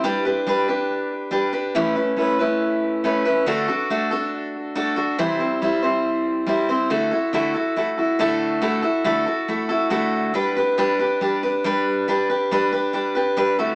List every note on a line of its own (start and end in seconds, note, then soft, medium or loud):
0.04 0.25 G3 medium
0.04 0.25 D4 medium
0.04 0.25 G4 medium
0.04 0.24 B4 medium
0.25 0.46 D4 soft
0.25 0.47 G4 medium
0.25 0.47 B4 medium
0.47 0.68 G3 medium
0.47 0.68 D4 medium
0.47 0.68 G4 medium
0.47 0.67 B4 medium
0.68 1.30 D4 soft
0.68 1.31 G4 medium
0.68 1.31 B4 medium
1.31 1.53 G3 medium
1.31 1.53 D4 medium
1.31 1.52 G4 medium
1.31 1.52 B4 medium
1.53 1.75 D4 medium
1.53 1.75 G4 medium
1.53 1.75 B4 medium
1.75 1.97 A2 medium
1.75 1.96 E3 medium
1.75 1.96 A3 medium
1.75 1.96 C#4 medium
1.75 1.95 E4 medium
1.75 1.94 B4 medium
1.95 2.15 A3 medium
1.95 2.16 C#4 medium
1.95 2.17 E4 medium
1.95 2.17 B4 medium
2.17 2.39 A3 medium
2.17 2.39 C#4 medium
2.17 2.39 E4 medium
2.17 2.38 B4 medium
2.39 3.03 A3 soft
2.39 3.03 C#4 medium
2.39 3.04 E4 medium
2.39 3.03 B4 medium
3.04 3.25 A3 medium
3.04 3.26 C#4 medium
3.04 3.25 E4 medium
3.04 3.24 B4 medium
3.25 3.46 A3 medium
3.25 3.47 C#4 medium
3.25 3.47 E4 medium
3.25 3.47 B4 medium
3.46 3.68 D3 medium
3.46 3.68 A3 medium
3.46 3.68 D4 medium
3.46 3.67 F#4 loud
3.46 3.66 A4 loud
3.68 3.89 D4 medium
3.68 3.89 F#4 medium
3.68 3.89 A4 medium
3.90 4.11 A3 medium
3.90 4.11 D4 medium
3.90 4.11 F#4 medium
3.90 4.10 A4 medium
4.11 4.74 D4 medium
4.11 4.75 F#4 medium
4.11 4.75 A4 medium
4.75 4.97 A3 medium
4.75 4.97 D4 medium
4.75 4.96 F#4 medium
4.75 4.95 A4 medium
4.96 5.19 D4 soft
4.96 5.18 F#4 medium
4.96 5.18 A4 medium
5.19 5.40 C3 medium
5.19 5.40 E3 medium
5.19 5.40 G3 medium
5.19 5.39 C4 medium
5.19 5.39 E4 loud
5.19 5.38 C5 loud
5.39 5.61 G3 medium
5.39 5.61 C4 medium
5.39 5.61 E4 medium
5.39 5.61 C5 medium
5.62 5.83 G3 medium
5.62 5.83 C4 medium
5.62 5.83 E4 medium
5.62 5.81 C5 medium
5.83 6.45 G3 soft
5.83 6.47 C4 soft
5.83 6.47 E4 medium
5.83 6.47 C5 medium
6.47 6.68 G3 medium
6.47 6.69 C4 medium
6.47 6.69 E4 medium
6.47 6.68 C5 medium
6.69 6.90 G3 soft
6.69 6.90 C4 medium
6.69 6.89 E4 medium
6.69 6.90 C5 medium
6.90 7.11 D3 medium
6.90 7.12 A3 medium
6.90 7.12 E4 medium
6.90 7.11 F#4 medium
6.90 7.10 A4 medium
7.11 7.33 E4 soft
7.11 7.33 F#4 soft
7.11 7.33 A4 medium
7.33 7.54 D3 medium
7.33 7.55 A3 medium
7.33 7.55 E4 medium
7.33 7.54 F#4 medium
7.33 7.53 A4 medium
7.54 7.76 E4 soft
7.54 7.76 F#4 soft
7.54 7.76 A4 medium
7.76 7.98 A3 medium
7.76 7.98 E4 medium
7.76 7.97 F#4 medium
7.76 7.96 A4 medium
7.97 8.19 E4 soft
7.97 8.19 F#4 medium
7.97 8.19 A4 medium
8.19 8.60 D3 medium
8.19 8.60 A3 medium
8.19 8.61 E4 medium
8.19 8.61 F#4 medium
8.19 8.62 A4 medium
8.62 8.83 D3 medium
8.62 8.83 A3 medium
8.62 8.83 E4 medium
8.62 8.82 F#4 medium
8.62 8.81 A4 medium
8.82 9.04 E4 soft
8.82 9.04 F#4 medium
8.82 9.05 A4 medium
9.04 9.26 D3 medium
9.04 9.27 A3 medium
9.04 9.27 E4 medium
9.04 9.26 F#4 medium
9.04 9.25 A4 medium
9.26 9.48 E4 soft
9.26 9.48 F#4 soft
9.26 9.48 A4 medium
9.48 9.70 A3 medium
9.48 9.70 E4 medium
9.48 9.69 F#4 medium
9.48 9.68 A4 medium
9.69 9.90 E4 soft
9.69 9.90 F#4 medium
9.69 9.90 A4 medium
9.90 10.34 D3 medium
9.90 10.33 A3 medium
9.90 10.34 E4 medium
9.90 10.34 F#4 medium
9.90 10.35 A4 loud
10.34 10.56 G3 medium
10.34 10.56 D4 medium
10.34 10.56 G4 medium
10.34 10.55 B4 medium
10.56 10.77 D4 soft
10.56 10.77 G4 soft
10.56 10.78 B4 medium
10.78 10.99 G3 medium
10.78 10.99 D4 medium
10.78 10.99 G4 medium
10.78 10.98 B4 medium
10.99 11.20 D4 soft
10.99 11.21 G4 medium
10.99 11.21 B4 medium
11.21 11.42 G3 medium
11.21 11.42 D4 medium
11.21 11.43 G4 medium
11.21 11.42 B4 medium
11.43 11.64 D4 soft
11.43 11.65 G4 medium
11.43 11.64 B4 medium
11.64 12.07 G3 medium
11.64 12.08 D4 medium
11.64 12.07 G4 medium
11.64 12.08 B4 loud
12.08 12.29 G3 medium
12.08 12.29 D4 medium
12.08 12.29 G4 medium
12.08 12.28 B4 medium
12.29 12.51 D4 soft
12.29 12.51 G4 soft
12.29 12.51 B4 medium
12.51 12.72 G3 medium
12.51 12.73 D4 medium
12.51 12.72 G4 medium
12.51 12.71 B4 medium
12.72 12.93 D4 soft
12.72 12.93 G4 soft
12.72 12.94 B4 medium
12.93 13.15 G3 medium
12.93 13.15 D4 medium
12.93 13.15 G4 medium
12.93 13.14 B4 medium
13.15 13.36 D4 medium
13.15 13.36 G4 medium
13.15 13.36 B4 medium
13.37 13.58 G3 medium
13.37 13.58 D4 medium
13.37 13.58 G4 medium
13.37 13.58 B4 medium
13.59 13.75 D3 medium
13.59 13.75 A3 medium
13.59 13.75 E4 medium
13.59 13.75 F#4 medium
13.59 13.75 A4 medium